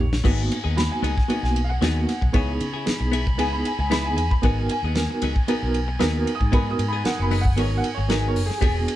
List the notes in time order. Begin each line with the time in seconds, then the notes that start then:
Already playing: C#5
0.00 A#1
0.13 muted clean electric guitar stroke, snare
0.24 G#1 F#3 A#3 B3 D#4 F#4 G#4 F#5 G#5, kick, crash
0.52 muted clean electric guitar stroke, ride bell
0.64 D#2 B3 D#4 G#4
0.76 A#3 B3 D#4 F#4 B5, muted clean electric guitar stroke, snare, ride bell
0.91 G#5, muted clean electric guitar stroke
1.02 C#2 F#3 B3 D#4 G#4, ride bell
1.17 muted clean electric guitar stroke, kick, snare
1.28 F#3 A#3 B3 D#4 F#4 G#4, muted fretless electric bass stroke, ride bell
1.43 B1 G#5, muted clean electric guitar stroke, snare
1.56 ride bell
1.64 F5
1.69 F#5, muted clean electric guitar stroke
1.81 D#2 F#3 A#3 B3 D#4 F#4 G#4, snare, ride bell
2.08 muted clean electric guitar stroke, snare, ride bell
2.21 B1, muted clean electric guitar stroke, kick
2.33 C#2 B3 D#4 E4 G#4 C#5 G#5 B5, kick, ride bell
2.60 C#3, muted clean electric guitar stroke, ride bell
2.74 E4 G#4
2.86 B3 D#4 E4 G#4, muted clean electric guitar stroke, muted fretless electric bass stroke, snare, ride bell
3.00 B1, muted clean electric guitar stroke
3.12 B3 E4 G#4, ride bell
3.27 muted clean electric guitar stroke, kick
3.38 C#2 B3 D#4 E4 G#4 G#5, ride bell
3.52 B5, muted clean electric guitar stroke
3.65 G#5, ride bell
3.79 C#2 G#5, muted clean electric guitar stroke
3.90 B3 D#4 E4 G#4 B5, snare, ride bell
4.05 G#5
4.16 E2 G#5, muted clean electric guitar stroke, ride bell
4.31 B5, muted clean electric guitar stroke, kick
4.42 G#1 F#3 B3 D#4 F#4 A#4 F#5 G#5, kick, ride bell
4.46 G#4
4.66 G5, ride bell
4.71 G#5, muted clean electric guitar stroke
4.83 D#2 D#4 G#4
4.87 B3
4.95 B3 D#4 F#4 A#4, muted clean electric guitar stroke, snare, ride bell
5.10 muted clean electric guitar stroke
5.22 C#2 F#3 B3 D#4 G#4, ride bell
5.36 muted clean electric guitar stroke, kick
5.48 F#3 B3 D#4 F#4 G#4 A#4, muted fretless electric bass stroke, ride bell
5.62 B1, muted clean electric guitar stroke
5.74 ride bell
5.88 muted clean electric guitar stroke
5.99 D#2 F#3 B3 D#4 F#4 G#4 A#4, snare, ride bell
6.26 muted clean electric guitar stroke, ride bell
6.35 D#6
6.40 G#2, muted clean electric guitar stroke, kick
6.52 F#3 B3 D#4 F#4 G#4 A#4 B5, kick, ride bell
6.71 D#6
6.78 G#2, muted clean electric guitar stroke, ride bell
6.88 B5
6.93 B3 D#4 G#4
7.04 B3 D#4 F#4 A#4 F#5, muted clean electric guitar stroke, muted fretless electric bass stroke, snare, ride bell
7.19 F#1 B5, muted clean electric guitar stroke
7.31 F#3 B3 D#4 G#4, open hi-hat
7.41 F#5, muted clean electric guitar stroke
7.45 kick
7.56 G#1 F#3 B3 D#4 F#4 G#4 A#4 C#5, ride bell
7.71 muted clean electric guitar stroke
7.78 F#5
7.84 ride bell
7.95 G#1 C#5, muted clean electric guitar stroke
8.08 F#3 B3 D#4 F#4 G#4 A#4, snare, ride bell
8.28 C#5
8.36 F#1, muted clean electric guitar stroke, open hi-hat
8.46 G#4
8.50 muted clean electric guitar stroke, snare
8.58 B3 D4 F#4 G4 G#4, kick
8.62 E1 D4 G#4 D5 E5, ride bell
8.88 muted clean electric guitar stroke, ride bell